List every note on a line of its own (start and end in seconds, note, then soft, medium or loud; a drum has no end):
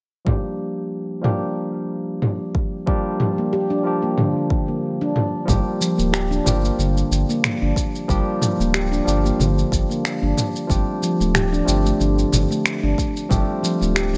0.25 1.20 F3 medium
0.25 1.20 G3 medium
0.25 1.21 A#3 medium
0.25 1.22 D4 medium
0.25 1.22 G4 medium
0.25 kick loud
0.25 mid tom medium
1.21 2.83 F3 medium
1.21 2.83 G3 medium
1.21 2.83 A#3 medium
1.21 2.84 D4 medium
1.21 2.85 G4 medium
1.21 mid tom medium
2.22 mid tom medium
2.55 kick medium
2.86 3.05 F3 medium
2.86 3.05 G3 medium
2.86 3.19 G3 medium
2.86 3.06 A#3 medium
2.86 3.06 D4 medium
2.86 3.06 G4 medium
2.86 kick loud
3.20 3.37 F3 medium
3.20 mid tom medium
3.38 3.52 A#3 medium
3.53 3.70 G4 medium
3.70 3.85 D4 medium
3.83 5.44 F3 medium
3.83 5.44 G3 medium
3.83 5.45 A#3 medium
3.83 5.45 D4 medium
3.83 5.46 G4 medium
4.03 4.17 A#3 medium
4.18 4.35 D3 medium
4.18 mid tom medium
4.50 kick loud
4.68 4.82 A#3 medium
5.01 5.15 D4 medium
5.16 mid tom medium
5.45 5.61 G1 medium
5.45 6.41 F3 medium
5.45 6.42 G3 medium
5.45 5.79 G3 medium
5.45 6.42 A#3 medium
5.45 6.43 D4 medium
5.45 kick loud
5.45 mid tom medium
5.45 shaker soft
5.50 6.43 G4 medium
5.81 5.98 F3 medium
5.81 shaker medium
5.98 6.39 D1 loud
5.98 6.13 A#3 medium
5.98 shaker soft
6.13 6.30 G4 medium
6.13 finger snap loud
6.13 shaker soft
6.31 6.45 D4 loud
6.31 shaker soft
6.44 6.70 G1 medium
6.44 8.05 F3 medium
6.44 8.05 G3 medium
6.44 8.06 A#3 medium
6.44 8.06 D4 medium
6.44 8.07 G4 medium
6.44 mid tom medium
6.44 shaker medium
6.64 6.78 A#3 medium
6.64 shaker soft
6.78 7.03 G1 medium
6.78 6.96 D3 medium
6.78 shaker soft
6.97 shaker soft
7.11 7.24 G1 loud
7.11 shaker medium
7.29 7.43 A#3 medium
7.29 shaker soft
7.44 finger snap medium
7.44 mid tom medium
7.44 shaker soft
7.62 7.72 G1 medium
7.62 7.76 D4 medium
7.76 kick loud
7.76 shaker medium
7.95 shaker soft
8.08 8.22 G1 medium
8.08 8.27 F3 medium
8.08 8.27 G3 medium
8.08 8.41 G3 medium
8.08 8.27 A#3 medium
8.08 8.28 D4 medium
8.08 8.28 G4 medium
8.08 kick loud
8.08 shaker soft
8.42 8.59 F3 medium
8.42 mid tom medium
8.42 shaker medium
8.59 9.00 D1 loud
8.59 8.74 A#3 medium
8.59 shaker soft
8.74 8.91 G4 medium
8.74 finger snap loud
8.74 shaker soft
8.92 9.06 D4 medium
8.92 shaker soft
9.04 9.31 G1 medium
9.04 10.65 F3 medium
9.04 10.66 G3 medium
9.04 10.66 A#3 medium
9.04 10.67 D4 medium
9.04 shaker medium
9.09 10.68 G4 medium
9.25 9.39 A#3 medium
9.25 shaker soft
9.39 9.64 G1 medium
9.39 9.57 D3 medium
9.39 mid tom medium
9.39 shaker soft
9.59 shaker soft
9.72 9.85 G1 loud
9.72 kick loud
9.72 shaker medium
9.90 10.04 A#3 medium
9.90 shaker soft
10.05 finger snap medium
10.05 shaker soft
10.22 10.33 G1 medium
10.22 10.37 D4 medium
10.37 mid tom medium
10.37 shaker medium
10.56 shaker soft
10.67 10.83 G1 medium
10.67 11.63 F3 medium
10.67 11.01 G3 medium
10.67 11.64 A3 medium
10.67 11.64 C4 medium
10.67 11.65 D4 medium
10.67 11.65 G4 medium
10.67 kick loud
10.67 shaker soft
11.02 11.20 F3 medium
11.02 shaker medium
11.20 11.61 D1 loud
11.20 11.35 A3 medium
11.20 shaker soft
11.35 11.52 G4 medium
11.35 finger snap medium
11.35 mid tom medium
11.35 shaker soft
11.53 11.67 D4 loud
11.53 shaker soft
11.65 11.92 G1 medium
11.65 13.26 F3 medium
11.65 13.27 A3 medium
11.65 13.27 C4 medium
11.65 13.27 D4 medium
11.65 shaker medium
11.69 13.28 G4 medium
11.85 12.00 A3 medium
11.85 shaker soft
12.00 12.24 G1 medium
12.00 12.17 D3 medium
12.00 shaker soft
12.19 shaker soft
12.33 12.46 G1 loud
12.33 mid tom medium
12.33 shaker medium
12.51 12.65 A3 medium
12.51 shaker soft
12.66 finger snap loud
12.66 shaker soft
12.83 12.94 G1 medium
12.83 12.98 D4 medium
12.98 kick medium
12.98 shaker medium
13.17 shaker soft
13.29 13.44 G1 medium
13.29 13.48 F3 medium
13.29 13.62 G3 medium
13.29 13.49 A3 medium
13.29 13.49 C4 medium
13.29 13.49 D4 medium
13.29 13.49 G4 medium
13.29 kick loud
13.29 mid tom medium
13.29 shaker soft
13.63 13.80 F3 medium
13.63 shaker medium
13.81 14.18 D1 loud
13.81 13.95 A3 medium
13.81 shaker soft
13.95 14.13 G4 medium
13.95 finger snap loud
13.95 shaker soft
14.14 14.18 D4 loud